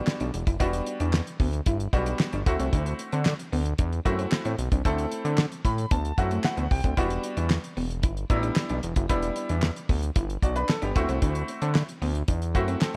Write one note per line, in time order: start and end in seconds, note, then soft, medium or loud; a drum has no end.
0.00 0.24 G3 medium
0.00 0.24 B3 medium
0.00 0.24 D4 medium
0.00 0.24 F#4 medium
0.07 snare loud
0.07 clap medium
0.20 0.31 B1 medium
0.20 0.28 D4 medium
0.20 closed hi-hat medium
0.34 0.44 E1 medium
0.34 muted clean electric guitar stroke soft
0.34 closed hi-hat medium
0.47 0.57 F#1 medium
0.47 0.55 E4 medium
0.47 kick loud
0.47 closed hi-hat medium
0.60 0.81 E1 medium
0.60 1.18 G3 medium
0.60 1.18 B3 medium
0.60 1.18 D4 medium
0.60 0.68 E4 medium
0.60 1.19 F#4 medium
0.60 kick medium
0.60 closed hi-hat medium
0.73 closed hi-hat medium
0.86 muted clean electric guitar stroke soft
0.86 closed hi-hat medium
1.00 1.21 E2 loud
1.00 1.08 D4 medium
1.00 closed hi-hat soft
1.13 snare loud
1.13 clap medium
1.27 closed hi-hat medium
1.40 1.61 D2 loud
1.40 1.48 B3 medium
1.40 kick medium
1.40 open hi-hat medium
1.53 closed hi-hat soft
1.66 1.88 G1 medium
1.66 1.74 E4 medium
1.66 kick loud
1.66 closed hi-hat medium
1.80 closed hi-hat medium
1.93 2.14 B1 medium
1.93 2.37 G3 medium
1.93 2.37 B3 medium
1.93 2.37 D4 medium
1.93 2.37 F#4 medium
1.93 muted clean electric guitar stroke soft
1.93 kick medium
1.93 closed hi-hat medium
2.06 2.14 D4 medium
2.06 closed hi-hat medium
2.19 snare loud
2.19 clap medium
2.33 2.43 G1 medium
2.33 2.41 D4 medium
2.33 closed hi-hat soft
2.46 2.57 D2 medium
2.46 3.31 A3 medium
2.46 3.31 C4 medium
2.46 3.31 E4 medium
2.46 3.31 F#4 medium
2.46 muted clean electric guitar stroke soft
2.46 kick loud
2.46 closed hi-hat medium
2.60 2.70 C2 loud
2.60 2.67 C4 medium
2.60 closed hi-hat medium
2.73 2.94 D2 loud
2.73 2.80 D4 medium
2.73 kick medium
2.73 closed hi-hat medium
2.86 closed hi-hat medium
2.99 muted clean electric guitar stroke soft
2.99 closed hi-hat medium
3.12 3.34 D3 loud
3.12 3.20 C4 medium
3.12 closed hi-hat soft
3.25 snare loud
3.25 clap loud
3.39 closed hi-hat medium
3.52 3.74 D2 loud
3.52 3.60 B3 medium
3.52 open hi-hat medium
3.66 closed hi-hat soft
3.78 4.00 E2 loud
3.78 3.86 D4 medium
3.78 kick loud
3.78 closed hi-hat medium
3.92 closed hi-hat soft
4.05 4.27 F#2 medium
4.05 4.49 A3 medium
4.05 4.49 C4 medium
4.05 4.49 E4 medium
4.05 4.49 F#4 medium
4.05 muted clean electric guitar stroke soft
4.05 kick medium
4.05 closed hi-hat medium
4.19 4.26 C4 medium
4.19 closed hi-hat medium
4.32 snare loud
4.32 clap loud
4.45 4.56 A2 loud
4.45 4.53 C4 medium
4.45 closed hi-hat soft
4.58 4.69 B1 medium
4.58 muted clean electric guitar stroke soft
4.58 closed hi-hat medium
4.72 4.82 C2 medium
4.72 4.79 D4 medium
4.72 kick medium
4.72 closed hi-hat medium
4.85 5.06 D2 loud
4.85 5.43 A3 medium
4.85 5.43 C4 medium
4.85 4.93 D4 medium
4.85 5.43 E4 medium
4.85 5.44 A4 medium
4.85 kick medium
4.85 closed hi-hat medium
4.98 closed hi-hat medium
5.11 muted clean electric guitar stroke soft
5.11 closed hi-hat medium
5.25 5.46 D3 loud
5.25 5.33 C4 medium
5.25 closed hi-hat soft
5.38 snare loud
5.38 clap medium
5.52 closed hi-hat soft
5.65 5.86 A2 loud
5.65 5.72 A3 medium
5.65 5.89 B5 medium
5.65 kick medium
5.65 closed hi-hat medium
5.78 closed hi-hat soft
5.91 6.12 D2 medium
5.91 5.99 B3 medium
5.91 6.16 A5 medium
5.91 kick loud
5.91 closed hi-hat medium
6.05 closed hi-hat soft
6.18 6.39 F#2 loud
6.18 6.61 A3 medium
6.18 6.61 C4 medium
6.18 6.62 E4 medium
6.18 6.62 F#4 medium
6.18 6.43 F#5 medium
6.18 muted clean electric guitar stroke soft
6.18 kick loud
6.18 closed hi-hat medium
6.31 6.39 A3 medium
6.31 closed hi-hat soft
6.44 6.69 F#5 medium
6.44 snare loud
6.44 clap medium
6.57 6.68 D2 loud
6.57 6.65 B3 medium
6.57 closed hi-hat soft
6.71 6.82 C2 medium
6.71 6.96 G5 medium
6.71 muted clean electric guitar stroke soft
6.71 kick medium
6.71 open hi-hat medium
6.84 6.95 D2 medium
6.84 6.92 C4 medium
6.84 kick medium
6.84 closed hi-hat medium
6.97 7.19 E1 medium
6.97 7.55 G3 medium
6.97 7.55 B3 medium
6.97 7.56 D4 medium
6.97 7.05 E4 medium
6.97 7.56 F#4 medium
6.97 kick medium
6.97 closed hi-hat medium
7.10 closed hi-hat medium
7.24 muted clean electric guitar stroke soft
7.24 closed hi-hat medium
7.37 7.58 E2 loud
7.37 7.44 D4 medium
7.37 closed hi-hat soft
7.50 snare loud
7.50 clap medium
7.64 closed hi-hat soft
7.77 8.05 E1 medium
7.77 7.84 B3 medium
7.77 open hi-hat medium
7.90 closed hi-hat soft
8.03 8.25 G1 medium
8.03 8.11 E4 medium
8.03 kick loud
8.03 closed hi-hat medium
8.17 closed hi-hat soft
8.30 8.51 A1 medium
8.30 8.36 F#3 medium
8.30 8.74 B3 medium
8.30 8.74 D4 medium
8.30 8.74 E4 medium
8.30 muted clean electric guitar stroke soft
8.30 kick medium
8.30 closed hi-hat medium
8.36 8.77 G3 medium
8.43 8.51 D4 medium
8.43 closed hi-hat medium
8.56 snare loud
8.56 clap medium
8.69 8.80 B1 loud
8.69 8.77 D4 medium
8.69 closed hi-hat soft
8.83 8.94 E1 medium
8.83 muted clean electric guitar stroke soft
8.83 closed hi-hat medium
8.96 9.07 F#1 medium
8.96 9.04 E4 medium
8.96 kick medium
8.96 closed hi-hat medium
9.09 9.31 E1 loud
9.09 9.68 G3 medium
9.09 9.68 B3 medium
9.09 9.68 D4 medium
9.09 9.17 E4 medium
9.09 9.68 E4 medium
9.09 kick medium
9.09 closed hi-hat medium
9.22 closed hi-hat medium
9.36 muted clean electric guitar stroke soft
9.36 closed hi-hat medium
9.49 9.71 E2 medium
9.49 9.57 D4 medium
9.49 closed hi-hat soft
9.62 snare loud
9.62 clap medium
9.76 closed hi-hat medium
9.89 10.11 D2 loud
9.89 9.97 B3 medium
9.89 kick medium
9.89 open hi-hat medium
10.03 closed hi-hat soft
10.16 10.37 G1 loud
10.16 10.24 E4 loud
10.16 kick loud
10.16 closed hi-hat medium
10.30 closed hi-hat soft
10.42 10.64 B1 loud
10.42 10.55 F#4 medium
10.42 10.55 D5 medium
10.42 muted clean electric guitar stroke soft
10.42 kick medium
10.42 closed hi-hat medium
10.56 10.63 D4 medium
10.56 10.69 D4 medium
10.56 10.68 B4 medium
10.56 closed hi-hat medium
10.69 10.82 A4 medium
10.69 snare loud
10.69 clap medium
10.82 10.93 G1 loud
10.82 11.08 B3 medium
10.82 10.89 D4 medium
10.82 11.08 G4 medium
10.82 closed hi-hat soft
10.95 11.06 D2 medium
10.95 11.81 A3 medium
10.95 11.81 C4 medium
10.95 11.81 E4 medium
10.95 11.81 F#4 medium
10.95 muted clean electric guitar stroke soft
10.95 kick loud
10.95 closed hi-hat medium
11.09 11.19 C2 loud
11.09 11.16 C4 medium
11.09 closed hi-hat medium
11.22 11.43 D2 loud
11.22 11.29 D4 medium
11.22 kick medium
11.22 closed hi-hat medium
11.35 closed hi-hat medium
11.48 muted clean electric guitar stroke soft
11.48 closed hi-hat medium
11.62 11.83 D3 loud
11.62 11.70 C4 medium
11.62 closed hi-hat soft
11.75 snare loud
11.75 clap medium
11.89 closed hi-hat medium
12.02 12.23 D2 loud
12.02 12.09 B3 medium
12.02 open hi-hat medium
12.15 closed hi-hat soft
12.28 12.56 E2 loud
12.28 12.36 D4 medium
12.28 kick loud
12.28 closed hi-hat loud
12.42 closed hi-hat soft
12.55 12.76 F#2 medium
12.55 12.96 A3 medium
12.55 12.81 C4 medium
12.55 12.82 E4 medium
12.55 12.82 F#4 medium
12.55 muted clean electric guitar stroke soft
12.55 kick medium
12.55 closed hi-hat medium
12.68 12.76 C4 medium
12.68 closed hi-hat soft
12.81 12.94 C4 medium
12.81 12.94 A4 medium
12.81 snare loud
12.81 clap medium